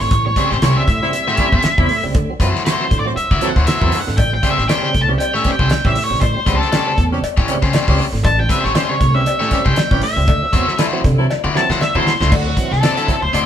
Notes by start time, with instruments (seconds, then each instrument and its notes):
0.00 upright bass G#1, tonewheel organ A2, lead electric guitar C#5, snare
0.11 upright bass A1, tonewheel organ A2, kick, closed hi-hat
0.26 tonewheel organ G3 C4, lead electric guitar C#5
0.36 tonewheel organ C#3 G3 C4, overdriven electric guitar A3 C#4 G4 C5, kick, closed hi-hat
0.51 upright bass A1, lead electric guitar C5, snare
0.62 upright bass C2, horn section G3 E4 C#5, overdriven electric guitar A3 C#4 G4 C5, lead electric guitar C#5, snare, closed hi-hat
0.76 tonewheel organ C#3 G3 C4, lead electric guitar E5
0.88 upright bass A2, tonewheel organ A2, kick, snare, closed hi-hat
1.02 tonewheel organ C#3 G3 C4, horn section G3 E4 C5
1.13 tonewheel organ G3 C4, closed hi-hat
1.27 tonewheel organ A2, overdriven electric guitar A3 C#4 G4 C#5, snare
1.37 tonewheel organ G3 C4, horn section G3 E4 C5, muted upright bass stroke, kick, snare, closed hi-hat
1.52 upright bass E2, overdriven electric guitar A3 C#4 G4 C5, kick
1.63 muted upright bass stroke, snare, closed hi-hat
1.78 upright bass E2, tonewheel organ C#3 G3 C4, horn section G3 E4 C5, kick
1.89 tonewheel organ A2, open hi-hat
2.03 upright bass C#2, tonewheel organ C#3 G3 C4
2.15 upright bass D2, tonewheel organ D3, kick, closed hi-hat
2.29 tonewheel organ F#3 C4
2.40 upright bass F#2, tonewheel organ E3 F#3 C4, overdriven electric guitar A3 E4 F#4 C5, kick, closed hi-hat
2.56 snare
2.65 overdriven electric guitar A3 E4 F#4 C5, horn section A3 F#4 C5, lead electric guitar C5, snare, closed hi-hat
2.80 tonewheel organ E3 F#3 C4
2.91 upright bass A2, tonewheel organ D3, kick, closed hi-hat
2.99 lead electric guitar D5
3.05 tonewheel organ E3 F#3 C4, horn section A3 F#4 C5
3.16 lead electric guitar E5, muted upright bass stroke, closed hi-hat
3.31 upright bass D3, overdriven electric guitar A3 E4 F#4 D5, kick, snare
3.41 tonewheel organ E3 F#3 C4, horn section F#3 E4 A4, closed hi-hat
3.49 lead electric guitar F#5
3.56 upright bass D2, overdriven electric guitar A3 E4 F#4 C5, kick, snare
3.66 overdriven electric guitar A3 E4 F#4 C5, lead electric guitar E5, muted upright bass stroke, snare, closed hi-hat
3.81 upright bass E2, tonewheel organ E3 F#3 C4, horn section F#3 E4 A4, overdriven electric guitar A3 E4 F#4 C5, kick
3.92 open hi-hat
4.00 lead electric guitar F#5
4.07 upright bass G#1, tonewheel organ D3, snare
4.17 upright bass A1, tonewheel organ A2, lead electric guitar G5, kick, closed hi-hat, cowbell
4.33 tonewheel organ G3 C4, lead electric guitar G5
4.43 tonewheel organ C#3 G3 C4, overdriven electric guitar A3 C#4 G4 C5, kick, closed hi-hat
4.50 lead electric guitar E5
4.58 upright bass A1, snare
4.68 horn section E3 C#4 G4, overdriven electric guitar A3 C#4 G4 C5, lead electric guitar G5, snare, closed hi-hat, cowbell
4.83 tonewheel organ C#3 G3 C4
4.94 upright bass C2, tonewheel organ A2, kick, closed hi-hat
5.02 lead electric guitar A5
5.08 tonewheel organ C#3 G3 C4, horn section E3 C#4 G4
5.18 tonewheel organ G3 C4, lead electric guitar G5, closed hi-hat, cowbell
5.34 tonewheel organ A2, overdriven electric guitar A3 C#4 G4 C#5, lead electric guitar E5, snare
5.44 horn section E3 C#4 G4, tonewheel organ G3 C4, muted upright bass stroke, kick, snare, closed hi-hat
5.52 lead electric guitar G5
5.59 upright bass C2, overdriven electric guitar A3 C#4 G4 C5, kick
5.70 snare, closed hi-hat, cowbell
5.85 upright bass A1, tonewheel organ C#3 G3 C4, horn section E3 C#4 G4, lead electric guitar E5, kick
5.95 tonewheel organ A2, open hi-hat
6.04 lead electric guitar C#5
6.10 upright bass A1, tonewheel organ C#3 G3 C4
6.21 upright bass A1, tonewheel organ A2, lead electric guitar C5, kick, closed hi-hat, cowbell
6.36 tonewheel organ G3 C4
6.46 upright bass C#2, tonewheel organ C#3 G3 C4, overdriven electric guitar A3 C#4 G4 C5, kick, closed hi-hat
6.55 lead electric guitar A4
6.62 snare
6.72 horn section E3 C#4 G4, overdriven electric guitar A3 C#4 G4 C5, snare, closed hi-hat, cowbell
6.86 tonewheel organ C#3 G3 C4
6.98 upright bass E2, tonewheel organ A2, kick, closed hi-hat
7.12 tonewheel organ C#3 G3 C4, horn section E3 C#4 G4
7.22 muted upright bass stroke, closed hi-hat, cowbell
7.37 upright bass A2, overdriven electric guitar A3 C#4 G4 C#5, kick, snare
7.48 tonewheel organ C#3 G3 C4, horn section E3 C#4 G4, closed hi-hat
7.62 upright bass C#3, overdriven electric guitar A3 C#4 G4 C5, kick, snare
7.73 overdriven electric guitar A3 C#4 G4 C5, muted upright bass stroke, snare, closed hi-hat, cowbell
7.87 upright bass C#2, tonewheel organ C#3 G3 C4, horn section E3 C#4 G4, overdriven electric guitar A3 C#4 G4 C5, kick
7.98 open hi-hat
8.12 upright bass G#1, tonewheel organ A2, snare
8.24 upright bass A1, tonewheel organ A2, lead electric guitar A5, kick, closed hi-hat, cowbell
8.39 tonewheel organ G3 C4, lead electric guitar G5
8.49 tonewheel organ C#3 G3 C4, overdriven electric guitar A3 C#4 G4 C5, lead electric guitar E5, kick, closed hi-hat
8.64 upright bass A1, lead electric guitar C#5, snare
8.74 horn section E3 C#4 G4, overdriven electric guitar A3 C#4 G4 C5, lead electric guitar C5, snare, closed hi-hat, cowbell
8.89 tonewheel organ C#3 G3 C4, lead electric guitar C#5
9.01 upright bass C2, tonewheel organ A2, kick, snare, closed hi-hat
9.14 tonewheel organ C#3 G3 C4, horn section E3 C#4 G4, lead electric guitar E5
9.26 tonewheel organ G3 C4, closed hi-hat, cowbell
9.39 tonewheel organ A2, overdriven electric guitar A3 C#4 G4 C#5, snare
9.51 horn section E3 C#4 G4, tonewheel organ G3 C4, muted upright bass stroke, kick, snare, closed hi-hat
9.65 upright bass C2, overdriven electric guitar A3 C#4 G4 C5, lead electric guitar G5, kick
9.76 muted upright bass stroke, snare, closed hi-hat, cowbell
9.91 upright bass A1, tonewheel organ C#3 G3 C4, horn section E3 C#4 G4, kick
10.02 tonewheel organ A2, lead electric guitar E5, open hi-hat
10.16 upright bass C#2, tonewheel organ C#3 G3 C4
10.28 upright bass D2, tonewheel organ D3, kick, closed hi-hat, cowbell
10.42 tonewheel organ F#3 C4
10.53 upright bass E2, tonewheel organ E3 F#3 C4, overdriven electric guitar A3 E4 F#4 C5, kick, closed hi-hat
10.68 snare
10.78 horn section F#3 E4 A4, overdriven electric guitar A3 E4 F#4 C5, snare, closed hi-hat, cowbell
10.93 tonewheel organ E3 F#3 C4
11.04 upright bass C3, tonewheel organ D3, kick, closed hi-hat
11.18 tonewheel organ E3 F#3 C4, horn section F#3 E4 A4
11.30 snare, cowbell
11.44 upright bass D3, overdriven electric guitar A3 E4 F#4 D5
11.55 tonewheel organ E3 F#3 C4, horn section F#3 E4 A4, lead electric guitar A5, snare
11.69 upright bass D3, overdriven electric guitar A3 E4 F#4 C5, lead electric guitar F#5, snare
11.81 lead electric guitar E5, snare, cowbell
11.94 upright bass D3, tonewheel organ E3 F#3 C4, horn section F#3 E4 A4, overdriven electric guitar A3 E4 F#4 C5, lead electric guitar C5
12.07 snare
12.20 upright bass C#2, tonewheel organ D3, overdriven electric guitar A3 E4 F#4 C5, snare
12.32 upright bass D2, tonewheel organ D3, lead electric guitar F#4, kick, crash, cowbell
12.47 tonewheel organ F#3 C4
12.57 tonewheel organ E3 F#3 C4, kick, closed hi-hat
12.71 upright bass C2, lead electric guitar A4, snare
12.83 tonewheel organ F#3 C4, overdriven electric guitar C4 E4 F#4 D5, snare, closed hi-hat, cowbell
12.97 tonewheel organ D3, overdriven electric guitar C4 E4 F#4 E5, closed hi-hat
13.08 tonewheel organ F#3 C4, muted upright bass stroke, kick, snare, closed hi-hat
13.22 upright bass D2, lead electric guitar C5
13.33 upright bass D2, overdriven electric guitar C4 E4 F#4 D5, closed hi-hat, cowbell